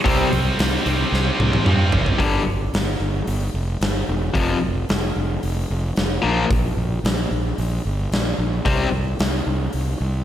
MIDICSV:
0, 0, Header, 1, 5, 480
1, 0, Start_track
1, 0, Key_signature, -2, "minor"
1, 0, Tempo, 537153
1, 45, Time_signature, 4, 2, 24, 8
1, 9152, End_track
2, 0, Start_track
2, 0, Title_t, "Distorted electric guitar"
2, 0, Program_c, 0, 30
2, 39, Note_on_c, 0, 48, 79
2, 56, Note_on_c, 0, 55, 106
2, 67, Note_on_c, 0, 60, 100
2, 745, Note_off_c, 0, 60, 0
2, 747, Note_off_c, 0, 48, 0
2, 755, Note_on_c, 0, 60, 91
2, 756, Note_off_c, 0, 55, 0
2, 769, Note_on_c, 0, 55, 86
2, 784, Note_on_c, 0, 48, 78
2, 1466, Note_off_c, 0, 60, 0
2, 1469, Note_off_c, 0, 48, 0
2, 1473, Note_off_c, 0, 55, 0
2, 1480, Note_on_c, 0, 48, 78
2, 1491, Note_on_c, 0, 55, 85
2, 1508, Note_on_c, 0, 60, 94
2, 1948, Note_off_c, 0, 48, 0
2, 1954, Note_off_c, 0, 55, 0
2, 1962, Note_off_c, 0, 60, 0
2, 9152, End_track
3, 0, Start_track
3, 0, Title_t, "Distorted electric guitar"
3, 0, Program_c, 1, 30
3, 40, Note_on_c, 1, 48, 102
3, 52, Note_on_c, 1, 55, 100
3, 54, Note_on_c, 1, 60, 92
3, 234, Note_off_c, 1, 48, 0
3, 240, Note_off_c, 1, 55, 0
3, 241, Note_off_c, 1, 60, 0
3, 1954, Note_on_c, 1, 43, 79
3, 1963, Note_on_c, 1, 50, 91
3, 1967, Note_on_c, 1, 55, 87
3, 2152, Note_off_c, 1, 43, 0
3, 2156, Note_off_c, 1, 50, 0
3, 2158, Note_off_c, 1, 55, 0
3, 3878, Note_on_c, 1, 41, 94
3, 3885, Note_on_c, 1, 48, 90
3, 3888, Note_on_c, 1, 53, 103
3, 4075, Note_off_c, 1, 41, 0
3, 4078, Note_off_c, 1, 48, 0
3, 4080, Note_off_c, 1, 53, 0
3, 5559, Note_on_c, 1, 46, 84
3, 5569, Note_on_c, 1, 53, 101
3, 5571, Note_on_c, 1, 58, 93
3, 5756, Note_off_c, 1, 46, 0
3, 5761, Note_off_c, 1, 53, 0
3, 5762, Note_off_c, 1, 58, 0
3, 7733, Note_on_c, 1, 48, 90
3, 7734, Note_on_c, 1, 55, 89
3, 7742, Note_on_c, 1, 60, 95
3, 7921, Note_off_c, 1, 48, 0
3, 7922, Note_off_c, 1, 55, 0
3, 7926, Note_off_c, 1, 60, 0
3, 9152, End_track
4, 0, Start_track
4, 0, Title_t, "Fingered electric bass"
4, 0, Program_c, 2, 33
4, 50, Note_on_c, 2, 36, 83
4, 201, Note_off_c, 2, 36, 0
4, 294, Note_on_c, 2, 36, 84
4, 443, Note_off_c, 2, 36, 0
4, 529, Note_on_c, 2, 36, 89
4, 680, Note_off_c, 2, 36, 0
4, 766, Note_on_c, 2, 36, 87
4, 919, Note_off_c, 2, 36, 0
4, 1003, Note_on_c, 2, 36, 100
4, 1156, Note_off_c, 2, 36, 0
4, 1247, Note_on_c, 2, 36, 99
4, 1399, Note_off_c, 2, 36, 0
4, 1484, Note_on_c, 2, 43, 95
4, 1637, Note_off_c, 2, 43, 0
4, 1721, Note_on_c, 2, 30, 104
4, 1875, Note_off_c, 2, 30, 0
4, 1966, Note_on_c, 2, 31, 86
4, 2151, Note_off_c, 2, 31, 0
4, 2203, Note_on_c, 2, 31, 88
4, 2389, Note_off_c, 2, 31, 0
4, 2443, Note_on_c, 2, 31, 89
4, 2629, Note_off_c, 2, 31, 0
4, 2682, Note_on_c, 2, 31, 85
4, 2869, Note_off_c, 2, 31, 0
4, 2924, Note_on_c, 2, 31, 85
4, 3110, Note_off_c, 2, 31, 0
4, 3163, Note_on_c, 2, 29, 84
4, 3350, Note_off_c, 2, 29, 0
4, 3403, Note_on_c, 2, 31, 92
4, 3590, Note_off_c, 2, 31, 0
4, 3650, Note_on_c, 2, 28, 91
4, 3834, Note_off_c, 2, 28, 0
4, 3892, Note_on_c, 2, 29, 95
4, 4075, Note_off_c, 2, 29, 0
4, 4127, Note_on_c, 2, 29, 81
4, 4312, Note_off_c, 2, 29, 0
4, 4368, Note_on_c, 2, 29, 83
4, 4553, Note_off_c, 2, 29, 0
4, 4612, Note_on_c, 2, 29, 85
4, 4796, Note_off_c, 2, 29, 0
4, 4855, Note_on_c, 2, 29, 83
4, 5037, Note_off_c, 2, 29, 0
4, 5096, Note_on_c, 2, 29, 96
4, 5278, Note_off_c, 2, 29, 0
4, 5336, Note_on_c, 2, 29, 79
4, 5518, Note_off_c, 2, 29, 0
4, 5574, Note_on_c, 2, 34, 91
4, 5757, Note_off_c, 2, 34, 0
4, 5815, Note_on_c, 2, 34, 78
4, 5998, Note_off_c, 2, 34, 0
4, 6049, Note_on_c, 2, 34, 92
4, 6234, Note_off_c, 2, 34, 0
4, 6288, Note_on_c, 2, 34, 97
4, 6473, Note_off_c, 2, 34, 0
4, 6532, Note_on_c, 2, 34, 91
4, 6715, Note_off_c, 2, 34, 0
4, 6774, Note_on_c, 2, 34, 90
4, 6956, Note_off_c, 2, 34, 0
4, 7017, Note_on_c, 2, 31, 89
4, 7198, Note_off_c, 2, 31, 0
4, 7253, Note_on_c, 2, 34, 78
4, 7436, Note_off_c, 2, 34, 0
4, 7492, Note_on_c, 2, 34, 95
4, 7675, Note_off_c, 2, 34, 0
4, 7739, Note_on_c, 2, 36, 89
4, 7919, Note_off_c, 2, 36, 0
4, 7971, Note_on_c, 2, 36, 82
4, 8154, Note_off_c, 2, 36, 0
4, 8218, Note_on_c, 2, 36, 92
4, 8398, Note_off_c, 2, 36, 0
4, 8457, Note_on_c, 2, 36, 87
4, 8637, Note_off_c, 2, 36, 0
4, 8702, Note_on_c, 2, 36, 83
4, 8880, Note_off_c, 2, 36, 0
4, 8940, Note_on_c, 2, 36, 90
4, 9118, Note_off_c, 2, 36, 0
4, 9152, End_track
5, 0, Start_track
5, 0, Title_t, "Drums"
5, 51, Note_on_c, 9, 36, 110
5, 52, Note_on_c, 9, 46, 90
5, 140, Note_off_c, 9, 36, 0
5, 141, Note_off_c, 9, 46, 0
5, 291, Note_on_c, 9, 46, 59
5, 380, Note_off_c, 9, 46, 0
5, 528, Note_on_c, 9, 46, 82
5, 539, Note_on_c, 9, 38, 118
5, 618, Note_off_c, 9, 46, 0
5, 628, Note_off_c, 9, 38, 0
5, 769, Note_on_c, 9, 46, 58
5, 858, Note_off_c, 9, 46, 0
5, 1017, Note_on_c, 9, 38, 62
5, 1107, Note_off_c, 9, 38, 0
5, 1251, Note_on_c, 9, 48, 83
5, 1340, Note_off_c, 9, 48, 0
5, 1370, Note_on_c, 9, 48, 79
5, 1459, Note_off_c, 9, 48, 0
5, 1484, Note_on_c, 9, 47, 87
5, 1573, Note_off_c, 9, 47, 0
5, 1719, Note_on_c, 9, 43, 115
5, 1808, Note_off_c, 9, 43, 0
5, 1843, Note_on_c, 9, 43, 92
5, 1932, Note_off_c, 9, 43, 0
5, 1965, Note_on_c, 9, 36, 102
5, 1965, Note_on_c, 9, 46, 57
5, 2054, Note_off_c, 9, 36, 0
5, 2055, Note_off_c, 9, 46, 0
5, 2446, Note_on_c, 9, 46, 55
5, 2456, Note_on_c, 9, 38, 108
5, 2535, Note_off_c, 9, 46, 0
5, 2546, Note_off_c, 9, 38, 0
5, 2925, Note_on_c, 9, 46, 52
5, 3015, Note_off_c, 9, 46, 0
5, 3408, Note_on_c, 9, 46, 57
5, 3419, Note_on_c, 9, 38, 116
5, 3498, Note_off_c, 9, 46, 0
5, 3508, Note_off_c, 9, 38, 0
5, 3889, Note_on_c, 9, 36, 107
5, 3889, Note_on_c, 9, 46, 54
5, 3978, Note_off_c, 9, 36, 0
5, 3978, Note_off_c, 9, 46, 0
5, 4369, Note_on_c, 9, 46, 52
5, 4380, Note_on_c, 9, 38, 113
5, 4459, Note_off_c, 9, 46, 0
5, 4469, Note_off_c, 9, 38, 0
5, 4851, Note_on_c, 9, 46, 58
5, 4940, Note_off_c, 9, 46, 0
5, 5328, Note_on_c, 9, 46, 50
5, 5339, Note_on_c, 9, 38, 97
5, 5418, Note_off_c, 9, 46, 0
5, 5429, Note_off_c, 9, 38, 0
5, 5814, Note_on_c, 9, 36, 117
5, 5814, Note_on_c, 9, 46, 57
5, 5903, Note_off_c, 9, 36, 0
5, 5903, Note_off_c, 9, 46, 0
5, 6297, Note_on_c, 9, 46, 55
5, 6308, Note_on_c, 9, 38, 107
5, 6387, Note_off_c, 9, 46, 0
5, 6397, Note_off_c, 9, 38, 0
5, 6775, Note_on_c, 9, 46, 53
5, 6864, Note_off_c, 9, 46, 0
5, 7259, Note_on_c, 9, 46, 58
5, 7270, Note_on_c, 9, 38, 111
5, 7349, Note_off_c, 9, 46, 0
5, 7359, Note_off_c, 9, 38, 0
5, 7734, Note_on_c, 9, 46, 54
5, 7737, Note_on_c, 9, 36, 104
5, 7823, Note_off_c, 9, 46, 0
5, 7826, Note_off_c, 9, 36, 0
5, 8215, Note_on_c, 9, 46, 58
5, 8226, Note_on_c, 9, 38, 114
5, 8304, Note_off_c, 9, 46, 0
5, 8315, Note_off_c, 9, 38, 0
5, 8692, Note_on_c, 9, 46, 50
5, 8781, Note_off_c, 9, 46, 0
5, 9152, End_track
0, 0, End_of_file